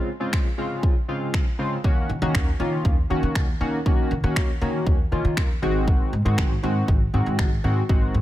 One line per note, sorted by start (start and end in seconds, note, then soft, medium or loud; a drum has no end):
0.20 0.47 C#3 medium
0.20 0.48 G#3 medium
0.20 0.48 C4 medium
0.20 0.48 F4 medium
0.33 finger snap loud
0.33 kick loud
0.58 0.94 C#3 medium
0.58 0.94 G#3 medium
0.58 0.95 C4 medium
0.58 0.95 F4 loud
0.83 kick loud
1.08 1.45 C#3 medium
1.08 1.45 G#3 medium
1.08 1.45 C4 medium
1.08 1.45 F4 medium
1.34 finger snap loud
1.34 kick loud
1.59 1.77 C#3 medium
1.59 1.77 G#3 medium
1.59 1.77 C4 medium
1.59 1.77 F4 medium
1.84 2.01 D#2 medium
1.84 2.11 D#3 medium
1.84 2.11 A#3 medium
1.84 2.12 C#4 medium
1.84 2.12 F#4 loud
1.84 kick loud
2.09 2.18 D#3 medium
2.22 2.30 D#3 loud
2.22 2.49 D#3 medium
2.22 2.49 A#3 medium
2.22 2.49 C#4 medium
2.22 2.49 F#4 medium
2.35 2.51 D#2 medium
2.35 finger snap loud
2.35 kick loud
2.60 2.96 D#3 medium
2.60 2.76 D#3 loud
2.60 2.96 A#3 medium
2.60 2.96 C#4 medium
2.60 2.96 F4 medium
2.85 3.01 D#2 loud
2.85 kick loud
3.10 3.46 D#3 medium
3.10 3.19 D#3 medium
3.10 3.47 A#3 medium
3.10 3.47 C#4 medium
3.10 3.47 F#4 medium
3.23 3.37 D#3 medium
3.35 3.52 D#2 medium
3.35 finger snap loud
3.35 kick loud
3.60 3.79 D#3 medium
3.60 3.77 D#3 medium
3.60 3.79 A#3 medium
3.60 3.79 C#4 medium
3.60 3.79 F#4 loud
3.86 4.02 D#2 medium
3.86 4.13 D#3 medium
3.86 4.13 A#3 medium
3.86 4.13 C#4 medium
3.86 4.13 F#4 loud
3.86 kick loud
4.11 4.19 D#3 medium
4.23 4.51 D#3 medium
4.23 4.32 D#3 medium
4.23 4.51 A#3 medium
4.23 4.51 C#4 medium
4.23 4.51 F#4 medium
4.36 finger snap loud
4.36 kick loud
4.61 4.98 D#3 medium
4.61 4.78 D#3 loud
4.61 4.98 A#3 medium
4.61 4.98 C#4 medium
4.61 4.98 F#4 medium
4.87 5.03 D#2 medium
4.87 kick loud
5.12 5.48 D#3 medium
5.12 5.20 D#3 medium
5.12 5.48 A#3 medium
5.12 5.48 C#4 medium
5.12 5.48 F4 medium
5.25 5.33 D#3 medium
5.37 5.54 D#2 medium
5.37 finger snap loud
5.37 kick loud
5.62 5.95 G#1 medium
5.62 6.13 D#3 medium
5.62 6.13 G#3 medium
5.62 6.13 C4 medium
5.62 6.13 F#4 loud
5.88 kick loud
6.13 6.21 G#2 medium
6.25 6.40 G#2 medium
6.25 6.53 D#3 medium
6.25 6.53 G#3 medium
6.25 6.53 C4 medium
6.25 6.53 F#4 loud
6.38 6.55 G#1 loud
6.38 finger snap loud
6.38 kick loud
6.63 6.80 G#2 loud
6.63 6.99 D#3 medium
6.63 7.00 G#3 medium
6.63 7.00 C4 medium
6.63 7.00 F#4 loud
6.88 7.05 G#1 medium
6.88 kick loud
7.14 7.22 G#2 medium
7.14 7.50 D#3 medium
7.14 7.50 G#3 medium
7.14 7.50 C4 medium
7.14 7.50 F#4 medium
7.26 7.40 G#2 medium
7.39 7.55 G#1 medium
7.39 finger snap loud
7.39 kick loud
7.64 7.80 G#2 medium
7.64 7.82 D#3 medium
7.64 7.82 G#3 medium
7.64 7.82 C4 medium
7.64 7.82 F#4 loud
7.89 8.06 G#1 medium
7.89 8.16 D#3 medium
7.89 8.17 G#3 medium
7.89 8.17 C4 medium
7.89 8.17 F#4 medium
7.89 kick loud
8.14 8.22 G#2 medium